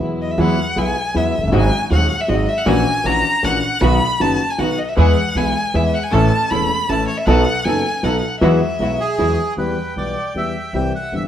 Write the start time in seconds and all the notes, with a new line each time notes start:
Already playing: F#3
0.00 E2 E3 F#3 G#3 B3 E4 G#4
0.22 D#5
0.31 E5
0.38 E2 E3 F#3 G#3 B3 E4 G#4 F#5
0.76 B1 B2 F#3 G#3 B3 E4 G#4 G#5
1.14 E2 E3 F#3 G#3 B3 E4 G#4 E5
1.38 F1
1.43 F#1
1.47 G1
1.52 G#1 G#2 F#3 G#3 C4 D#4 F#4 G#4 G#5
1.90 D#1 D#2 F#3 G#3 C4 D#4 F#4 G#4 F#5
2.21 E5
2.28 G#1 G#2 F#3 G#3 C4 D#4 F#4 G#4 D#5
2.49 E5
2.58 F#5
2.66 A#1 A#2 E3 A#3 C#4 E4 F#4 G#5
3.04 A#1 A#2 E3 A#3 C#4 E4 F#4 A#5
3.42 A#1 A#2 E3 A#3 C#4 E4 F#4 F#5
3.81 B1 B2 D#3 F#3 B3 D#4 F#4 B5
4.20 F#1 F#2 D#3 F#3 B3 D#4 F#4 A5
4.50 G#5
4.58 B1 B2 D#3 F#3 B3 D#4 F#4 F#5
4.79 D#5
4.89 E5
4.96 E2 E3 G#3 B3 E4 G#4 F#5
5.35 B1 B2 E3 G#3 B3 E4 G#4 G#5
5.74 E2 E3 G#3 B3 E4 G#4 E5
5.94 F#5
6.03 G#5
6.12 A1 A2 E3 A3 C#4 E4 A4 A5
6.50 E1 E2 E3 A3 C#4 E4 A4 B5
6.89 A1 A2 E3 A3 C#4 E4 A4 A5
7.08 C#5
7.17 E5
7.26 B1 B2 F#3 B3 D#4 A4 F#5
7.64 F#1 F#2 F#3 B3 D#4 A4 G#5
8.03 B1 B2 F#3 B3 D#4 A4 F#5
8.41 E2 E3 F#3 G#3 B3 E4 F#4 G#4 E5
8.79 B1 B2 F#3 G#3 B3 E4 F#4 G#4
9.00 G#4
9.18 E2 E3 F#3 G#3 B3 E4 F#4 G#4
9.57 E2 E3 G3 B3 G4 B4 G5
9.96 B1 B2 E3 G3 B3 G4 D5
10.34 E2 E3 G3 B3 G4 E5
10.73 C2 C3 E3 G3 C4 G4 E5 G5
10.95 F#5
11.12 G1 G2 E3 G3 C4 G4 E5